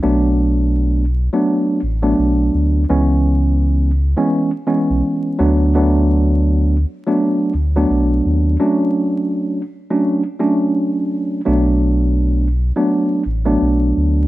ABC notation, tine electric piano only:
X:1
M:4/4
L:1/16
Q:"Swing 16ths" 1/4=84
K:Bdor
V:1 name="Tine electric piano"
[F,A,B,D]6 z [F,A,B,D]3 z [F,A,B,D]4- [F,A,B,D] | [E,G,B,C]6 z [E,G,B,C]2 z [E,G,B,C]4 [F,A,B,D]2 | [F,A,B,D]6 z [F,A,B,D]3 z [F,A,B,D]4- [F,A,B,D] | [F,A,CD]6 z [F,A,CD]2 z [F,A,CD]6 |
[F,A,B,D]6 z [F,A,B,D]3 z [F,A,B,D]4- [F,A,B,D] |]